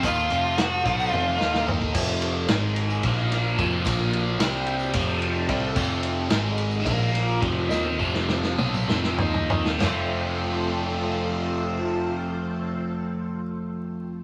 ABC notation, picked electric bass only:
X:1
M:7/8
L:1/8
Q:1/4=108
K:Fmix
V:1 name="Picked electric bass" clef=bass
E,, F,,,2 =B,,, F,,, E,, E,, | F,,,2 _A,,,2 B,,,2 F,,, | B,,,2 C,,2 F,,,2 C,, | F,,,2 _A,,,2 B,,,2 F,,, |
E,, F,,,2 =B,,, F,,, E,, E,, | F,,,6- F,,,- | F,,,6- F,,, |]